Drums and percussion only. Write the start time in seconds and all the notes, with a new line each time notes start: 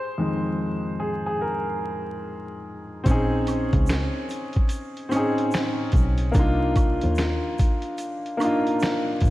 3.06 kick, closed hi-hat, shaker
3.47 closed hi-hat, high woodblock, shaker
3.73 kick, closed hi-hat
3.86 finger snap, snare, closed hi-hat, shaker
4.29 closed hi-hat, shaker
4.53 kick, closed hi-hat
4.69 closed hi-hat, shaker
4.97 closed hi-hat
5.12 closed hi-hat, high woodblock, shaker
5.38 closed hi-hat
5.51 finger snap, snare, closed hi-hat, shaker
5.92 kick, closed hi-hat
5.96 shaker
6.18 closed hi-hat
6.34 kick, closed hi-hat, shaker
6.76 kick, closed hi-hat, high woodblock, shaker
7.01 closed hi-hat
7.15 finger snap, snare, closed hi-hat, shaker
7.58 kick, closed hi-hat, shaker
7.82 closed hi-hat
7.98 closed hi-hat, shaker
8.26 closed hi-hat
8.40 closed hi-hat, high woodblock, shaker
8.67 closed hi-hat
8.80 finger snap, snare, closed hi-hat, shaker
9.20 kick, closed hi-hat
9.25 shaker